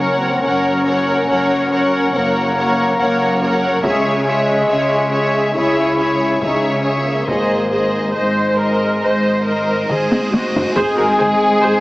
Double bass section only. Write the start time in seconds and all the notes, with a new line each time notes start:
Already playing: F#1
0.45 F#1
1.30 F#1
2.14 F#1
3.00 F#1
3.85 C#2
4.70 C#2
5.56 C#2
6.42 C#2
7.29 G#1
8.16 G#1
9.03 G#1
9.90 G#1
10.77 G#1
10.99 G#1
11.20 G#1
11.63 G#1